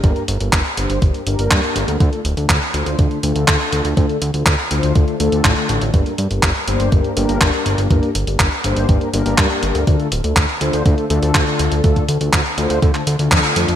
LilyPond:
<<
  \new Staff \with { instrumentName = "Analog polysynth" } { \time 4/4 \key d \minor \tempo 4 = 122 <g, bes d' g' bes'>8 r16 <g, bes d' g' bes'>8 r16 <g, bes d' g' c''>8 <g, bes d' g' bes'>8 <g, bes d' g' bes'>8. <g, bes d' g' bes'>8. | <d a d' f'>8 r16 <d a d' f' a'>8 r16 <d a d' f' c''>8 <d a d' f' a'>8 <d a d' f' a'>8. <d a d' f'>8. | <d a d' f' a'>8 r16 <d a d' f' a'>8 r16 <d a d' f' c''>8 <d a f' a'>8 <d a d' f' a'>8. <d a d' f' a'>8. | <g, bes d' g' bes'>8 r16 <g, bes d' g' bes'>8 r16 <g, bes d' g' c''>8 <g, bes g' bes'>8 <g, bes d' g' bes'>8. <g, bes d' g' bes'>8. |
<g, bes d' g' bes'>8 r16 <g, bes d' g' bes'>8 r16 <g, bes d' g' c''>8 <g, bes d' g' bes'>8 <g, bes d' g' bes'>8. <g, bes d' g' bes'>8. | <d a d' f' a'>8 r16 <d a d' f' a'>8 r16 <d a d' f' c''>8 <d a d' f' a'>8 <d a d' f' a'>8. <d a d' f' a'>8. | <d a d' f' a'>8 r16 <d a d' f' a'>8 r16 <d a d' f' c''>8 <d a d' f' a'>8 r16 <d a d' f' a'>8. <a d' f' a'>8 | }
  \new Staff \with { instrumentName = "Analog synth bass" } { \clef bass \time 4/4 \key d \minor g,,16 r16 g,,16 g,,16 g,,16 r16 g,,16 g,,16 g,,16 r16 g,,16 g,,16 g,16 r16 g,,16 d,16 | d,16 r16 d,,16 d,16 d,16 r16 d,16 d,16 d,16 r16 d,16 d,16 d,16 r16 d,16 d,16 | d,16 r16 d,16 d,16 d,16 r16 d,16 d,16 d,16 r16 d,16 d,16 a,,16 r16 a,,16 a,,16 | g,,16 r16 g,16 g,,16 g,,16 r16 g,,16 g,,16 g,,16 r16 g,,16 g,,16 g,,16 r16 g,,16 g,,16 |
g,,16 r16 g,,16 g,,16 g,,16 r16 g,,16 g,,16 g,,16 r16 g,,16 g,,16 g,16 r16 g,,16 d,16 | d,16 r16 d,,16 d,16 d,16 r16 d,16 d,16 d,16 r16 d,16 d,16 d,16 r16 d,16 d,16 | d,16 r16 d,16 d,16 d,16 r16 d,16 d,16 d,16 r16 d,16 d,16 f,16 r16 f,16 f,16 | }
  \new DrumStaff \with { instrumentName = "Drums" } \drummode { \time 4/4 <hh bd>16 hh16 hh16 hh16 <hc hh bd>16 hh16 hh16 hh16 <hh bd>16 hh16 hh16 hh16 <hc hh bd>16 hh16 hh16 hh16 | <hh bd>16 hh16 hh16 hh16 <hc hh bd>16 hh16 hh16 hh16 <hh bd>16 hh16 hh16 hh16 <hc hh bd>16 hh16 hh16 hh16 | <hh bd>16 hh16 hh16 hh16 <hc hh bd>16 hh16 hh16 hh16 <hh bd>16 hh16 hh16 hh16 <hc hh bd>16 hh16 hh16 hh16 | <hh bd>16 hh16 hh16 hh16 <hc hh bd>16 hh16 hh16 hh16 <hh bd>16 hh16 hh16 hh16 <hc hh bd>16 hh16 hh16 hh16 |
<hh bd>16 hh16 hh16 hh16 <hc hh bd>16 hh16 hh16 hh16 <hh bd>16 hh16 hh16 hh16 <hc hh bd>16 hh16 hh16 hh16 | <hh bd>16 hh16 hh16 hh16 <hc hh bd>16 hh16 hh16 hh16 <hh bd>16 hh16 hh16 hh16 <hc hh bd>16 hh16 hh16 hh16 | <hh bd>16 <hh bd>16 hh16 hh16 <hc hh bd>16 hh16 hh16 hh16 <hh bd>16 <hc hh>16 hh16 hh16 <hc hh bd>16 hh16 hh16 hh16 | }
>>